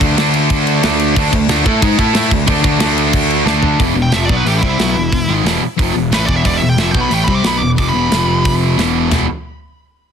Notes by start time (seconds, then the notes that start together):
0.01 D2 D3 A3 D4, kick, crash
0.18 D2 D3 A3 D4, snare, crash
0.34 crash
0.50 kick, crash
0.67 crash
0.83 D2 D3 A3 D4, snare, crash
0.99 crash
1.15 D2 D3 A3 D4, kick, crash
1.31 D2 D3 A3, kick, crash
1.49 D2 D3 A3 D4, snare, crash
1.64 A2 A3 E4 A4, kick, crash
1.82 G#2 G#3 D#4 G#4, kick, crash
1.98 A2 A3 E4 A4, kick, crash
2.13 A2 A3 E4 A4, snare, crash
2.31 D2 D3 A3, kick, crash
2.46 D2 D3 A3 D4, kick, crash
2.61 D2 D3 A3 D4, kick, crash
2.78 D2 D3 A3 D4, snare, crash
2.98 crash
3.13 kick, crash
3.30 crash
3.46 D2 D3 A3 D4, snare
3.63 floor tom
3.79 E1 E2 B2 E3, kick, open hi-hat
3.94 E1 E2 B2
4.02 G5
4.12 F1 F2 C3 F3 E5, snare, open hi-hat
4.25 B2 D5
4.29 B1 F#3 B3, kick
4.37 B4
4.45 A1 A2 E3 A3 G4, open hi-hat
4.58 E4
4.62 C2 C3 G3 C4, kick
4.69 E4
4.78 B1 B2 F#3 B3, snare, open hi-hat
4.95 E1 E2 B2
5.12 E1 E2 B2, kick, open hi-hat
5.28 G#1 G#2 D#3 G#3
5.43 E1 E2 B2 E3, snare, open hi-hat
5.61 muted picked electric bass stroke, muted distorted electric guitar stroke
5.77 F1 F2 C3 F3, kick, open hi-hat
5.94 E1 E2 B2
6.11 A1 A2 E3 A3 B4, snare, open hi-hat
6.26 E1 E2 B2 E3 D5, kick
6.36 E5
6.43 E1 E2 B2 E3 D5, kick, open hi-hat
6.58 E1 E2 E5
6.62 B2
6.69 G5
6.77 F1 F2 C3 F3 E5, snare, open hi-hat
6.91 B1 B2 F#3 B3 G5, kick
7.01 B5
7.09 A1 A2 E3 A3, open hi-hat
7.14 G5
7.24 C3 B5, kick
7.28 C2 G3 C4
7.35 D6
7.43 B1 B2 F#3 B3 B5, snare, open hi-hat
7.58 E1 E2 B2 D6
7.76 F1 F2 C3 F3 D6, kick, open hi-hat
7.89 E2 E3 B5
7.93 E1 B2
8.10 F1 F2 C3 F3, snare, open hi-hat
8.45 kick, open hi-hat
8.76 E1 E2 B2 E3, snare, open hi-hat
9.11 E1 E2 B2 E3, snare, floor tom, crash